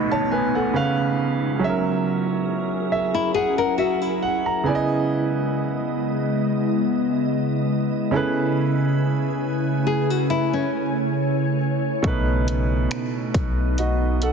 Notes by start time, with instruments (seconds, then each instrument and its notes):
Already playing: grand piano B2 B3 A4 D#5 B5 C#6, ambient pad A3 B3 D#4, downlifter
0.12 grand piano C#5 A5
0.32 grand piano B4 G#5
0.55 grand piano A4 F#5
0.74 grand piano C#3 C#4 B4 F5
1.59 grand piano F#3 C#4 G#4, ambient pad F#3 C#4 E4 G#4 A#4
1.64 grand piano E5
1.69 grand piano A#4
2.92 grand piano E5
3.14 nylon-string guitar E4
3.34 nylon-string guitar G#4, grand piano F#5
3.58 nylon-string guitar A#4, grand piano F#5
3.78 nylon-string guitar F#4, grand piano E5
4.02 nylon-string guitar E4
4.23 grand piano F#5
4.46 grand piano A#5
4.64 grand piano C#3 B3 E4 G#5, ambient pad C#3 G#3 B3 D#5
4.69 grand piano D5
4.75 grand piano D#5
8.11 grand piano C#3 C#4 E4 G#4, ambient pad A3 C#4 B4 G#5
8.15 grand piano A4 B4
9.87 nylon-string guitar G#4, ambient pad C#5
10.10 nylon-string guitar F#4
10.30 nylon-string guitar E4
10.53 nylon-string guitar C#4
12.02 808-style bass B1, grand piano B2 A3 D#4, ambient pad A3 B3 D#4, kick, closed hi-hat
12.07 grand piano B4
12.48 closed hi-hat
12.91 finger snap, closed hi-hat
13.34 808-style bass B1, kick, closed hi-hat
13.78 grand piano F#4 D#5, closed hi-hat
14.22 grand piano A4 F#5, closed hi-hat